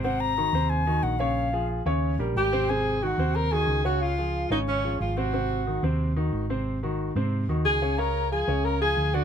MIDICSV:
0, 0, Header, 1, 5, 480
1, 0, Start_track
1, 0, Tempo, 330761
1, 59, Time_signature, 4, 2, 24, 8
1, 13412, End_track
2, 0, Start_track
2, 0, Title_t, "Ocarina"
2, 0, Program_c, 0, 79
2, 56, Note_on_c, 0, 78, 87
2, 296, Note_on_c, 0, 82, 99
2, 318, Note_off_c, 0, 78, 0
2, 1010, Note_on_c, 0, 80, 86
2, 1032, Note_off_c, 0, 82, 0
2, 1496, Note_on_c, 0, 78, 91
2, 1518, Note_off_c, 0, 80, 0
2, 1729, Note_on_c, 0, 77, 93
2, 1751, Note_off_c, 0, 78, 0
2, 2454, Note_off_c, 0, 77, 0
2, 3433, Note_on_c, 0, 79, 88
2, 3908, Note_on_c, 0, 80, 84
2, 3930, Note_off_c, 0, 79, 0
2, 4387, Note_on_c, 0, 79, 66
2, 4409, Note_off_c, 0, 80, 0
2, 4454, Note_on_c, 0, 78, 72
2, 4469, Note_off_c, 0, 79, 0
2, 4860, Note_on_c, 0, 82, 82
2, 4882, Note_off_c, 0, 78, 0
2, 5099, Note_on_c, 0, 80, 87
2, 5120, Note_off_c, 0, 82, 0
2, 5567, Note_off_c, 0, 80, 0
2, 5576, Note_on_c, 0, 78, 73
2, 5812, Note_on_c, 0, 77, 82
2, 5833, Note_off_c, 0, 78, 0
2, 6528, Note_off_c, 0, 77, 0
2, 6536, Note_on_c, 0, 75, 66
2, 6623, Note_off_c, 0, 75, 0
2, 6782, Note_on_c, 0, 73, 75
2, 7228, Note_off_c, 0, 73, 0
2, 7263, Note_on_c, 0, 77, 78
2, 7503, Note_on_c, 0, 78, 72
2, 7524, Note_off_c, 0, 77, 0
2, 8463, Note_off_c, 0, 78, 0
2, 11106, Note_on_c, 0, 80, 80
2, 11582, Note_on_c, 0, 82, 87
2, 11604, Note_off_c, 0, 80, 0
2, 12057, Note_off_c, 0, 82, 0
2, 12066, Note_on_c, 0, 80, 77
2, 12550, Note_on_c, 0, 82, 79
2, 12572, Note_off_c, 0, 80, 0
2, 12787, Note_off_c, 0, 82, 0
2, 12794, Note_on_c, 0, 80, 88
2, 13267, Note_on_c, 0, 78, 77
2, 13289, Note_off_c, 0, 80, 0
2, 13412, Note_off_c, 0, 78, 0
2, 13412, End_track
3, 0, Start_track
3, 0, Title_t, "Alto saxophone"
3, 0, Program_c, 1, 65
3, 3441, Note_on_c, 1, 67, 99
3, 3921, Note_on_c, 1, 68, 97
3, 3942, Note_off_c, 1, 67, 0
3, 4401, Note_on_c, 1, 66, 88
3, 4423, Note_off_c, 1, 68, 0
3, 4877, Note_on_c, 1, 70, 104
3, 4899, Note_off_c, 1, 66, 0
3, 5115, Note_on_c, 1, 68, 104
3, 5137, Note_off_c, 1, 70, 0
3, 5588, Note_off_c, 1, 68, 0
3, 5599, Note_on_c, 1, 66, 91
3, 5836, Note_on_c, 1, 65, 100
3, 5858, Note_off_c, 1, 66, 0
3, 6544, Note_off_c, 1, 65, 0
3, 6552, Note_on_c, 1, 63, 84
3, 6658, Note_off_c, 1, 63, 0
3, 6797, Note_on_c, 1, 61, 88
3, 7237, Note_off_c, 1, 61, 0
3, 7271, Note_on_c, 1, 65, 80
3, 7521, Note_on_c, 1, 66, 88
3, 7543, Note_off_c, 1, 65, 0
3, 8472, Note_off_c, 1, 66, 0
3, 11108, Note_on_c, 1, 68, 96
3, 11593, Note_on_c, 1, 70, 97
3, 11615, Note_off_c, 1, 68, 0
3, 12068, Note_off_c, 1, 70, 0
3, 12077, Note_on_c, 1, 68, 93
3, 12549, Note_on_c, 1, 70, 108
3, 12570, Note_off_c, 1, 68, 0
3, 12786, Note_off_c, 1, 70, 0
3, 12795, Note_on_c, 1, 68, 95
3, 13275, Note_on_c, 1, 66, 94
3, 13297, Note_off_c, 1, 68, 0
3, 13412, Note_off_c, 1, 66, 0
3, 13412, End_track
4, 0, Start_track
4, 0, Title_t, "Grand piano"
4, 0, Program_c, 2, 0
4, 61, Note_on_c, 2, 48, 83
4, 64, Note_on_c, 2, 60, 86
4, 67, Note_on_c, 2, 72, 84
4, 454, Note_off_c, 2, 48, 0
4, 456, Note_off_c, 2, 60, 0
4, 458, Note_off_c, 2, 72, 0
4, 544, Note_on_c, 2, 51, 72
4, 547, Note_on_c, 2, 63, 72
4, 548, Note_on_c, 2, 66, 67
4, 739, Note_off_c, 2, 51, 0
4, 741, Note_off_c, 2, 63, 0
4, 741, Note_off_c, 2, 66, 0
4, 787, Note_on_c, 2, 48, 85
4, 792, Note_on_c, 2, 60, 77
4, 797, Note_on_c, 2, 72, 85
4, 1178, Note_off_c, 2, 48, 0
4, 1180, Note_off_c, 2, 60, 0
4, 1183, Note_off_c, 2, 72, 0
4, 1260, Note_on_c, 2, 51, 73
4, 1261, Note_on_c, 2, 63, 83
4, 1265, Note_on_c, 2, 66, 74
4, 1653, Note_off_c, 2, 51, 0
4, 1654, Note_off_c, 2, 63, 0
4, 1657, Note_off_c, 2, 66, 0
4, 1732, Note_on_c, 2, 49, 84
4, 1740, Note_on_c, 2, 61, 88
4, 1744, Note_on_c, 2, 73, 91
4, 2129, Note_off_c, 2, 49, 0
4, 2133, Note_off_c, 2, 61, 0
4, 2136, Note_off_c, 2, 73, 0
4, 2215, Note_on_c, 2, 53, 74
4, 2221, Note_on_c, 2, 65, 84
4, 2227, Note_on_c, 2, 68, 82
4, 2610, Note_off_c, 2, 53, 0
4, 2614, Note_off_c, 2, 65, 0
4, 2618, Note_off_c, 2, 68, 0
4, 2699, Note_on_c, 2, 49, 85
4, 2703, Note_on_c, 2, 61, 94
4, 2706, Note_on_c, 2, 73, 89
4, 3093, Note_off_c, 2, 49, 0
4, 3095, Note_off_c, 2, 61, 0
4, 3097, Note_off_c, 2, 73, 0
4, 3183, Note_on_c, 2, 55, 80
4, 3186, Note_on_c, 2, 67, 75
4, 3194, Note_on_c, 2, 70, 80
4, 3575, Note_off_c, 2, 55, 0
4, 3577, Note_off_c, 2, 67, 0
4, 3582, Note_off_c, 2, 70, 0
4, 3662, Note_on_c, 2, 48, 84
4, 3668, Note_on_c, 2, 60, 98
4, 3670, Note_on_c, 2, 72, 98
4, 3858, Note_off_c, 2, 48, 0
4, 3862, Note_off_c, 2, 60, 0
4, 3863, Note_off_c, 2, 72, 0
4, 3907, Note_on_c, 2, 48, 79
4, 3911, Note_on_c, 2, 60, 79
4, 3915, Note_on_c, 2, 72, 79
4, 4298, Note_off_c, 2, 48, 0
4, 4300, Note_off_c, 2, 60, 0
4, 4303, Note_off_c, 2, 72, 0
4, 4388, Note_on_c, 2, 51, 62
4, 4391, Note_on_c, 2, 63, 62
4, 4393, Note_on_c, 2, 66, 65
4, 4582, Note_off_c, 2, 51, 0
4, 4583, Note_off_c, 2, 63, 0
4, 4585, Note_off_c, 2, 66, 0
4, 4629, Note_on_c, 2, 48, 77
4, 4634, Note_on_c, 2, 60, 82
4, 4636, Note_on_c, 2, 72, 85
4, 5019, Note_off_c, 2, 48, 0
4, 5022, Note_off_c, 2, 60, 0
4, 5024, Note_off_c, 2, 72, 0
4, 5104, Note_on_c, 2, 51, 72
4, 5109, Note_on_c, 2, 63, 73
4, 5110, Note_on_c, 2, 66, 67
4, 5496, Note_off_c, 2, 51, 0
4, 5499, Note_off_c, 2, 63, 0
4, 5500, Note_off_c, 2, 66, 0
4, 5579, Note_on_c, 2, 49, 80
4, 5585, Note_on_c, 2, 61, 81
4, 5589, Note_on_c, 2, 73, 83
4, 5973, Note_off_c, 2, 49, 0
4, 5977, Note_off_c, 2, 61, 0
4, 5979, Note_off_c, 2, 73, 0
4, 6069, Note_on_c, 2, 53, 71
4, 6071, Note_on_c, 2, 65, 73
4, 6076, Note_on_c, 2, 68, 73
4, 6460, Note_off_c, 2, 53, 0
4, 6461, Note_off_c, 2, 65, 0
4, 6464, Note_off_c, 2, 68, 0
4, 6545, Note_on_c, 2, 49, 73
4, 6548, Note_on_c, 2, 61, 78
4, 6552, Note_on_c, 2, 73, 82
4, 6937, Note_off_c, 2, 49, 0
4, 6939, Note_off_c, 2, 61, 0
4, 6942, Note_off_c, 2, 73, 0
4, 7025, Note_on_c, 2, 53, 75
4, 7031, Note_on_c, 2, 65, 73
4, 7033, Note_on_c, 2, 68, 68
4, 7417, Note_off_c, 2, 53, 0
4, 7421, Note_off_c, 2, 65, 0
4, 7423, Note_off_c, 2, 68, 0
4, 7498, Note_on_c, 2, 48, 76
4, 7503, Note_on_c, 2, 60, 85
4, 7511, Note_on_c, 2, 72, 83
4, 7696, Note_off_c, 2, 48, 0
4, 7700, Note_off_c, 2, 60, 0
4, 7704, Note_off_c, 2, 72, 0
4, 7741, Note_on_c, 2, 48, 78
4, 7745, Note_on_c, 2, 60, 74
4, 7749, Note_on_c, 2, 72, 79
4, 8135, Note_off_c, 2, 48, 0
4, 8138, Note_off_c, 2, 60, 0
4, 8140, Note_off_c, 2, 72, 0
4, 8222, Note_on_c, 2, 51, 70
4, 8227, Note_on_c, 2, 63, 66
4, 8232, Note_on_c, 2, 66, 62
4, 8419, Note_off_c, 2, 51, 0
4, 8422, Note_off_c, 2, 63, 0
4, 8425, Note_off_c, 2, 66, 0
4, 8464, Note_on_c, 2, 48, 83
4, 8468, Note_on_c, 2, 60, 85
4, 8473, Note_on_c, 2, 72, 74
4, 8857, Note_off_c, 2, 48, 0
4, 8860, Note_off_c, 2, 60, 0
4, 8862, Note_off_c, 2, 72, 0
4, 8944, Note_on_c, 2, 51, 69
4, 8946, Note_on_c, 2, 63, 80
4, 8952, Note_on_c, 2, 66, 74
4, 9337, Note_off_c, 2, 51, 0
4, 9339, Note_off_c, 2, 63, 0
4, 9342, Note_off_c, 2, 66, 0
4, 9429, Note_on_c, 2, 48, 80
4, 9433, Note_on_c, 2, 60, 80
4, 9438, Note_on_c, 2, 72, 78
4, 9820, Note_off_c, 2, 48, 0
4, 9823, Note_off_c, 2, 60, 0
4, 9825, Note_off_c, 2, 72, 0
4, 9910, Note_on_c, 2, 51, 71
4, 9915, Note_on_c, 2, 63, 75
4, 9918, Note_on_c, 2, 66, 79
4, 10301, Note_off_c, 2, 51, 0
4, 10304, Note_off_c, 2, 63, 0
4, 10306, Note_off_c, 2, 66, 0
4, 10392, Note_on_c, 2, 48, 85
4, 10396, Note_on_c, 2, 60, 84
4, 10398, Note_on_c, 2, 72, 76
4, 10782, Note_off_c, 2, 48, 0
4, 10784, Note_off_c, 2, 60, 0
4, 10785, Note_off_c, 2, 72, 0
4, 10867, Note_on_c, 2, 51, 70
4, 10874, Note_on_c, 2, 63, 75
4, 10879, Note_on_c, 2, 66, 75
4, 11259, Note_off_c, 2, 51, 0
4, 11263, Note_off_c, 2, 63, 0
4, 11266, Note_off_c, 2, 66, 0
4, 11347, Note_on_c, 2, 49, 82
4, 11351, Note_on_c, 2, 61, 83
4, 11352, Note_on_c, 2, 73, 80
4, 11542, Note_off_c, 2, 49, 0
4, 11545, Note_off_c, 2, 61, 0
4, 11545, Note_off_c, 2, 73, 0
4, 11582, Note_on_c, 2, 49, 83
4, 11588, Note_on_c, 2, 61, 76
4, 11591, Note_on_c, 2, 73, 80
4, 11976, Note_off_c, 2, 49, 0
4, 11980, Note_off_c, 2, 61, 0
4, 11981, Note_off_c, 2, 73, 0
4, 12064, Note_on_c, 2, 53, 64
4, 12070, Note_on_c, 2, 65, 60
4, 12072, Note_on_c, 2, 68, 63
4, 12261, Note_off_c, 2, 53, 0
4, 12264, Note_off_c, 2, 65, 0
4, 12265, Note_off_c, 2, 68, 0
4, 12303, Note_on_c, 2, 49, 77
4, 12306, Note_on_c, 2, 61, 77
4, 12314, Note_on_c, 2, 73, 74
4, 12697, Note_off_c, 2, 49, 0
4, 12699, Note_off_c, 2, 61, 0
4, 12703, Note_off_c, 2, 73, 0
4, 12780, Note_on_c, 2, 53, 74
4, 12785, Note_on_c, 2, 65, 71
4, 12785, Note_on_c, 2, 68, 72
4, 13175, Note_off_c, 2, 53, 0
4, 13177, Note_off_c, 2, 68, 0
4, 13178, Note_off_c, 2, 65, 0
4, 13261, Note_on_c, 2, 50, 83
4, 13266, Note_on_c, 2, 62, 79
4, 13271, Note_on_c, 2, 74, 86
4, 13412, Note_off_c, 2, 50, 0
4, 13412, Note_off_c, 2, 62, 0
4, 13412, Note_off_c, 2, 74, 0
4, 13412, End_track
5, 0, Start_track
5, 0, Title_t, "Fingered electric bass"
5, 0, Program_c, 3, 33
5, 0, Note_on_c, 3, 32, 84
5, 694, Note_off_c, 3, 32, 0
5, 768, Note_on_c, 3, 39, 100
5, 1443, Note_off_c, 3, 39, 0
5, 1494, Note_on_c, 3, 34, 93
5, 2614, Note_off_c, 3, 34, 0
5, 2692, Note_on_c, 3, 39, 85
5, 3142, Note_off_c, 3, 39, 0
5, 3173, Note_on_c, 3, 34, 72
5, 3399, Note_off_c, 3, 34, 0
5, 3407, Note_on_c, 3, 32, 87
5, 4532, Note_off_c, 3, 32, 0
5, 4612, Note_on_c, 3, 39, 87
5, 5286, Note_off_c, 3, 39, 0
5, 5327, Note_on_c, 3, 37, 78
5, 6453, Note_off_c, 3, 37, 0
5, 6533, Note_on_c, 3, 32, 86
5, 7207, Note_off_c, 3, 32, 0
5, 7260, Note_on_c, 3, 32, 83
5, 8380, Note_off_c, 3, 32, 0
5, 8458, Note_on_c, 3, 39, 90
5, 9130, Note_off_c, 3, 39, 0
5, 9178, Note_on_c, 3, 32, 83
5, 10299, Note_off_c, 3, 32, 0
5, 10382, Note_on_c, 3, 44, 86
5, 10829, Note_off_c, 3, 44, 0
5, 10860, Note_on_c, 3, 39, 60
5, 11085, Note_off_c, 3, 39, 0
5, 11103, Note_on_c, 3, 37, 74
5, 12221, Note_off_c, 3, 37, 0
5, 12300, Note_on_c, 3, 37, 84
5, 12971, Note_off_c, 3, 37, 0
5, 13016, Note_on_c, 3, 38, 76
5, 13412, Note_off_c, 3, 38, 0
5, 13412, End_track
0, 0, End_of_file